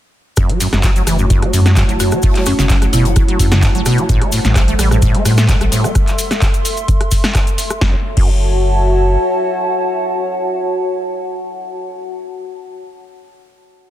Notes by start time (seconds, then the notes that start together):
0.37 F#1 F#2 A3 E4 F#4, kick, cross-stick, closed hi-hat, cabasa
0.49 F#3, closed hi-hat
0.60 F#2 C#5, closed hi-hat, open hi-hat, cabasa
0.73 F#1 F#2 A5, cross-stick, snare, closed hi-hat, cabasa
0.83 F#3, kick, snare, clap, closed hi-hat, cabasa
0.96 F#3, closed hi-hat, cabasa
1.07 F#1 E3, cross-stick, snare, closed hi-hat, open hi-hat, cabasa
1.15 F#2 F#5, cabasa
1.30 F#2, kick, closed hi-hat, cabasa
1.42 F#3, cross-stick, closed hi-hat
1.53 F#2, closed hi-hat, open hi-hat, cabasa
1.66 F#3, cross-stick, snare, closed hi-hat, cabasa
1.76 F#3, kick, cross-stick, snare, clap, closed hi-hat, cabasa
1.89 F#1 F#3, closed hi-hat, cabasa
2.00 F#2 F#4, closed hi-hat, open hi-hat, cabasa
2.11 F#3, cross-stick, closed hi-hat, cabasa
2.23 F#1 A3, kick, closed hi-hat, open hi-hat, cabasa
2.35 F#3, clap, closed hi-hat
2.46 F#2 C#4, cross-stick, open hi-hat, cabasa
2.59 F#1 C#3 C#4, snare, closed hi-hat, cabasa
2.69 F#3, kick, snare, clap, closed hi-hat, cabasa
2.82 F#3, cross-stick, closed hi-hat, cabasa
2.93 F#1 B2 E4, closed hi-hat, open hi-hat, cabasa
3.05 F#3, closed hi-hat, cabasa
3.16 F#3, kick, cross-stick, closed hi-hat, cabasa
3.28 F#3, closed hi-hat
3.39 F#2, kick, closed hi-hat, open hi-hat, cabasa
3.51 C#3, cross-stick, snare, closed hi-hat, cabasa
3.63 F#2, kick, snare, clap, closed hi-hat, cabasa
3.75 F#1 F#3, closed hi-hat, cabasa
3.86 B2, cross-stick, closed hi-hat, open hi-hat, cabasa
3.98 F#3, closed hi-hat, cabasa
4.09 A1 A2 G3 A4 C5, kick, closed hi-hat, cabasa
4.22 A3, cross-stick, closed hi-hat
4.32 A2, closed hi-hat, open hi-hat, cabasa
4.45 A1 A2, snare, closed hi-hat, cabasa
4.55 A3 E5, kick, cross-stick, snare, clap, closed hi-hat, cabasa
4.68 A3 C6, closed hi-hat, cabasa
4.79 A1 G3, cross-stick, snare, closed hi-hat, open hi-hat, cabasa
4.91 A2, cross-stick, cabasa
5.02 A2, kick, closed hi-hat, cabasa
5.15 A3, closed hi-hat
5.25 A2, cross-stick, closed hi-hat, open hi-hat, cabasa
5.37 A3, cross-stick, snare, cabasa
5.49 A3, kick, snare, clap, closed hi-hat, cabasa
5.61 A1 A3, cross-stick, closed hi-hat, cabasa
5.72 A2, snare, closed hi-hat, open hi-hat, cabasa
5.84 A3, cross-stick, closed hi-hat, cabasa
5.95 kick, cross-stick, closed hi-hat, cabasa
6.08 clap, closed hi-hat, cabasa
6.18 open hi-hat, cabasa
6.31 cross-stick, snare, closed hi-hat, cabasa
6.42 kick, clap, closed hi-hat, cabasa
6.54 closed hi-hat, cabasa
6.65 open hi-hat, cabasa
6.77 closed hi-hat, cabasa
6.88 kick, closed hi-hat, cabasa
7.01 cross-stick, closed hi-hat
7.11 kick, open hi-hat, cabasa
7.24 cross-stick, snare, closed hi-hat, cabasa
7.35 kick, cross-stick, clap, closed hi-hat, cabasa
7.47 closed hi-hat, cabasa
7.58 open hi-hat, cabasa
7.70 cross-stick, closed hi-hat, cabasa
7.81 F#1 F#2 F#4 E5 A5, kick, snare
7.89 C#5
7.96 F#5
8.03 A5
8.17 F#1 F#2, kick, crash